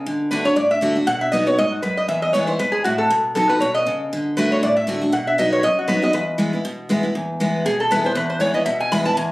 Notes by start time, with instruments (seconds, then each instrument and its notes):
0.06 steel-string acoustic guitar D3
0.31 steel-string acoustic guitar D3 A3 D4 F#4, resonator guitar played with a steel bar B4
0.45 steel-string acoustic guitar D4 F#4, resonator guitar played with a steel bar C#5
0.56 steel-string acoustic guitar A2, resonator guitar played with a steel bar D5
0.71 resonator guitar played with a steel bar E5
0.81 steel-string acoustic guitar D3 A3 D4 F#4
0.95 steel-string acoustic guitar D4 F#4
1.07 steel-string acoustic guitar B2, resonator guitar played with a steel bar F#5
1.21 resonator guitar played with a steel bar E5
1.32 steel-string acoustic guitar F#3 B3 D#4 F#4, resonator guitar played with a steel bar D#5
1.46 steel-string acoustic guitar D#4 F#4, resonator guitar played with a steel bar C#5
1.58 steel-string acoustic guitar G#2, resonator guitar played with a steel bar D#5
1.72 resonator guitar played with a steel bar F#4
1.82 steel-string acoustic guitar F#2, resonator guitar played with a steel bar B4
1.97 resonator guitar played with a steel bar D#5
2.08 steel-string acoustic guitar E2, resonator guitar played with a steel bar E5
2.22 resonator guitar played with a steel bar D#5
2.33 steel-string acoustic guitar E3 G#3 B3 E4, resonator guitar played with a steel bar C#5
2.47 steel-string acoustic guitar B3 E4, resonator guitar played with a steel bar C5
2.59 steel-string acoustic guitar G#2, resonator guitar played with a steel bar B4
2.72 resonator guitar played with a steel bar G#4
2.84 steel-string acoustic guitar A2, resonator guitar played with a steel bar F#4
2.98 resonator guitar played with a steel bar A4
3.10 steel-string acoustic guitar B2
3.35 steel-string acoustic guitar F#3 B3 D#4 F#4, resonator guitar played with a steel bar A4
3.49 steel-string acoustic guitar D#4 F#4, resonator guitar played with a steel bar B4
3.60 steel-string acoustic guitar B2, resonator guitar played with a steel bar C#5
3.75 resonator guitar played with a steel bar D#5
3.87 steel-string acoustic guitar C#3
4.13 steel-string acoustic guitar D3
4.37 steel-string acoustic guitar D3 A3 D4 F#4, resonator guitar played with a steel bar B4
4.52 resonator guitar played with a steel bar C#5
4.63 steel-string acoustic guitar A2, resonator guitar played with a steel bar D5
4.77 resonator guitar played with a steel bar E5
4.87 steel-string acoustic guitar D3 A3 D4 F#4
5.01 steel-string acoustic guitar D4 F#4
5.12 steel-string acoustic guitar B2, resonator guitar played with a steel bar F#5
5.27 resonator guitar played with a steel bar E5
5.38 steel-string acoustic guitar F#3 B3 D#4 F#4, resonator guitar played with a steel bar D#5
5.53 resonator guitar played with a steel bar C#5
5.63 steel-string acoustic guitar F#2, resonator guitar played with a steel bar D#5
5.79 resonator guitar played with a steel bar F#4
5.88 steel-string acoustic guitar F#3 B3 D#4 F#4, resonator guitar played with a steel bar B4
6.02 steel-string acoustic guitar D#4 F#4, resonator guitar played with a steel bar D#5
6.13 steel-string acoustic guitar E2, resonator guitar played with a steel bar B4
6.38 steel-string acoustic guitar E3 G#3 B3 E4
6.53 steel-string acoustic guitar B3 E4
6.65 steel-string acoustic guitar B2
6.89 steel-string acoustic guitar E3 G#3 B3 E4
7.03 steel-string acoustic guitar B3 E4
7.15 steel-string acoustic guitar E2
7.40 steel-string acoustic guitar E3 G#3 B3 E4
7.65 steel-string acoustic guitar B2, resonator guitar played with a steel bar G#4
7.80 resonator guitar played with a steel bar A4
7.91 steel-string acoustic guitar E3 G#3 B3 E4, resonator guitar played with a steel bar B4
8.04 steel-string acoustic guitar B3 E4, resonator guitar played with a steel bar C5
8.15 steel-string acoustic guitar E2, resonator guitar played with a steel bar B4
8.30 resonator guitar played with a steel bar C5
8.40 steel-string acoustic guitar E3 G#3 B3 E4, resonator guitar played with a steel bar C#5
8.54 steel-string acoustic guitar B3 E4, resonator guitar played with a steel bar D#5
8.66 steel-string acoustic guitar B2, resonator guitar played with a steel bar E5
8.80 resonator guitar played with a steel bar G#5
8.92 steel-string acoustic guitar E3 G#3 B3 E4, resonator guitar played with a steel bar B5
9.05 steel-string acoustic guitar B3 E4, resonator guitar played with a steel bar A5
9.17 steel-string acoustic guitar E2, resonator guitar played with a steel bar G#5